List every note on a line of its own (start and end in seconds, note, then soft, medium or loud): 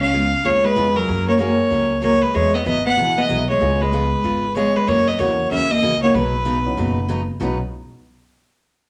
0.00 0.32 C#2 loud
0.00 0.44 C#4 medium
0.00 0.46 F5 loud
0.12 0.24 C#3 medium
0.12 0.24 G#3 medium
0.12 0.24 B3 medium
0.12 0.24 F4 medium
0.12 0.24 G#4 medium
0.44 0.71 D#2 medium
0.44 0.65 C#3 medium
0.44 0.63 G#3 medium
0.44 0.65 G#3 medium
0.44 0.65 B3 medium
0.44 0.65 F4 medium
0.44 0.66 G#4 medium
0.44 0.66 C#5 loud
0.64 0.96 G#3 medium
0.64 0.97 B4 loud
0.75 1.03 F2 medium
0.75 0.87 C#3 medium
0.75 1.07 G#3 medium
0.75 0.87 G#3 medium
0.75 1.08 B3 medium
0.75 0.88 B3 medium
0.75 1.08 C#4 medium
0.75 1.08 F4 medium
0.75 0.88 F4 medium
0.75 1.08 G#4 medium
0.75 0.88 G#4 medium
0.96 1.27 F#3 medium
0.96 1.28 A#4 medium
1.07 1.59 F#2 loud
1.07 1.28 F#3 medium
1.07 1.28 A#3 medium
1.07 1.29 C#4 medium
1.07 1.29 G#4 medium
1.28 1.39 A#3 medium
1.28 1.38 C#5 medium
1.38 1.50 F#3 medium
1.38 1.57 G#3 medium
1.38 1.51 A#3 medium
1.38 1.57 A#3 medium
1.38 1.99 A#3 medium
1.38 1.57 C#4 medium
1.38 1.51 C#4 medium
1.38 1.57 F#4 medium
1.38 1.57 G#4 medium
1.38 1.51 G#4 medium
1.38 1.99 C#5 medium
1.70 2.22 C#2 medium
1.70 1.91 F#3 medium
1.70 1.92 A#3 medium
1.70 1.92 C#4 medium
1.70 1.92 G#4 medium
2.02 2.14 F#3 medium
2.02 2.14 A#3 medium
2.02 2.23 A#3 medium
2.02 2.14 C#4 medium
2.02 2.14 G#4 medium
2.02 2.23 C#5 loud
2.22 2.33 G#3 medium
2.22 2.36 B4 medium
2.33 2.60 E2 medium
2.33 2.55 E3 medium
2.33 2.55 F#3 medium
2.33 2.55 G#3 medium
2.33 2.55 B3 medium
2.33 2.55 E4 medium
2.33 2.55 G#4 medium
2.33 2.55 C#5 loud
2.54 2.66 B3 medium
2.54 2.65 D#5 medium
2.65 2.93 G#1 medium
2.65 2.77 E3 medium
2.65 2.77 F#3 medium
2.65 2.77 B3 medium
2.65 2.85 B3 medium
2.65 2.78 E4 medium
2.65 2.78 G#4 medium
2.65 2.84 D#5 medium
2.86 3.16 B3 medium
2.86 3.19 F#5 loud
2.97 3.25 A#1 medium
2.97 3.18 E3 medium
2.97 3.19 F#3 medium
2.97 3.45 G#3 medium
2.97 3.45 B3 medium
2.97 3.19 B3 medium
2.97 3.45 E4 medium
2.97 3.19 E4 medium
2.97 3.45 F#4 medium
2.97 3.46 G#4 medium
2.97 3.19 G#4 medium
3.18 3.49 B3 medium
3.18 3.49 D#5 loud
3.29 3.56 B1 medium
3.29 3.40 E3 medium
3.29 3.41 F#3 medium
3.29 3.41 B3 medium
3.29 3.41 E4 medium
3.29 3.41 G#4 medium
3.49 3.79 G#3 medium
3.49 3.82 C#5 medium
3.60 4.12 C#2 medium
3.60 3.81 C#3 medium
3.60 3.79 G#3 medium
3.60 3.81 G#3 medium
3.60 3.79 B3 medium
3.60 3.82 B3 medium
3.60 3.79 C#4 medium
3.60 3.82 F4 medium
3.60 3.79 F4 medium
3.60 3.79 G#4 medium
3.60 3.82 G#4 medium
3.81 4.56 G#3 medium
3.81 4.55 B4 medium
3.92 4.04 C#3 medium
3.92 4.04 G#3 medium
3.92 4.04 B3 medium
3.92 4.04 F4 medium
3.92 4.04 G#4 medium
4.24 4.75 G#1 medium
4.24 4.45 C#3 medium
4.24 4.45 G#3 medium
4.24 4.45 B3 medium
4.24 4.45 F4 medium
4.24 4.45 G#4 medium
4.55 4.67 C#3 medium
4.55 4.67 G#3 medium
4.55 4.75 G#3 medium
4.55 4.68 B3 medium
4.55 4.68 F4 medium
4.55 4.68 G#4 medium
4.55 4.77 C#5 loud
4.76 4.88 G#3 medium
4.76 4.89 B4 medium
4.87 5.13 F#2 medium
4.87 5.08 C#3 medium
4.87 5.08 E3 medium
4.87 5.09 A#3 medium
4.87 5.08 A#3 medium
4.87 5.09 C#4 medium
4.87 5.09 F#4 medium
4.87 5.09 C#5 loud
5.07 5.20 B3 medium
5.07 5.20 D#5 medium
5.18 5.46 E2 medium
5.18 5.30 C#3 medium
5.18 5.30 E3 medium
5.18 5.67 F#3 medium
5.18 5.31 A#3 medium
5.18 5.67 A#3 medium
5.18 5.51 A#3 medium
5.18 5.31 C#4 medium
5.18 5.67 C#4 medium
5.18 5.67 E4 medium
5.18 5.31 F#4 medium
5.18 5.67 F#4 medium
5.18 5.50 C#5 medium
5.51 5.78 D#2 medium
5.51 5.72 C#3 medium
5.51 5.72 E3 medium
5.51 5.72 A#3 medium
5.51 5.71 C#4 medium
5.51 5.72 C#4 medium
5.51 5.72 F#4 medium
5.51 5.72 E5 loud
5.71 6.02 A#3 medium
5.71 6.02 D#5 loud
5.82 6.10 C#2 medium
5.82 5.94 C#3 medium
5.82 5.94 E3 medium
5.82 5.94 A#3 medium
5.82 5.94 C#4 medium
5.82 5.95 F#4 medium
6.02 6.13 F#3 medium
6.02 6.15 A#3 medium
6.02 6.13 B3 medium
6.02 6.13 C#4 medium
6.02 6.13 D#4 medium
6.02 6.14 F#4 medium
6.02 6.16 C#5 medium
6.14 6.65 B1 loud
6.14 6.35 B2 soft
6.14 6.35 C#3 medium
6.14 6.35 F#3 medium
6.14 7.10 F#3 medium
6.14 6.35 B3 medium
6.14 6.36 D#4 medium
6.14 7.09 B4 medium
6.14 6.36 B4 medium
6.45 6.57 B2 medium
6.45 6.57 C#3 medium
6.45 6.57 F#3 medium
6.45 6.57 B3 medium
6.45 6.57 D#4 medium
6.45 6.57 B4 medium
6.65 7.07 F#3 medium
6.65 7.07 B3 medium
6.65 7.07 C#4 medium
6.65 7.07 D#4 medium
6.65 7.07 F#4 medium
6.77 7.28 F#1 medium
6.77 6.98 B2 medium
6.77 6.98 C#3 medium
6.77 6.98 F#3 medium
6.77 6.99 B3 medium
6.77 6.99 D#4 medium
6.77 6.99 B4 medium
7.08 7.20 B2 medium
7.08 7.20 C#3 medium
7.08 7.20 F#3 medium
7.08 7.20 B3 medium
7.08 7.21 D#4 medium
7.08 7.21 B4 medium
7.40 7.59 B1 loud
7.40 7.56 B2 medium
7.40 7.56 C#3 medium
7.40 7.58 F#3 medium
7.40 7.57 F#3 medium
7.40 7.59 B3 medium
7.40 7.57 B3 medium
7.40 7.59 C#4 medium
7.40 7.59 D#4 medium
7.40 7.57 D#4 medium
7.40 7.59 F#4 medium
7.40 7.57 B4 medium